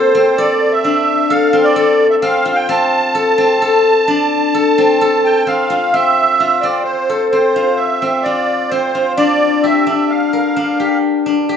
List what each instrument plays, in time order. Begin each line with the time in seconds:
Already playing: guzheng C4 F4 G4 A4, accordion C5
0.15 guzheng C4
0.37 guzheng A4, accordion D5
0.72 accordion E5
0.84 guzheng D4
1.30 guzheng A4, accordion F5
1.53 guzheng C4
1.64 accordion D5
1.76 guzheng A4
2.10 accordion E5
2.22 guzheng C4, accordion F5
2.45 guzheng F4
2.55 accordion G5
2.69 guzheng C4, accordion A5
3.15 guzheng A4
3.38 guzheng C4
3.62 guzheng A4
4.08 guzheng D4
4.54 guzheng A4
4.78 guzheng C4
5.01 guzheng A4
5.24 accordion G5
5.47 guzheng C4, accordion F5
5.70 guzheng F4
5.93 guzheng C4, accordion E5
6.40 guzheng F4
6.61 guzheng C4, accordion D5
6.84 accordion C5
7.09 guzheng A4
7.31 guzheng C4, accordion C5
7.56 guzheng F4
7.76 accordion E5
8.02 guzheng C4
8.22 guzheng F4, accordion D5
8.69 guzheng C4, accordion C5
8.95 guzheng F4
9.17 guzheng D4, accordion D5
9.63 guzheng G4, accordion E5
9.87 guzheng D4
10.10 accordion F5
10.33 guzheng A#4
10.56 guzheng D4
10.80 guzheng G4
11.26 guzheng D4
11.49 guzheng G4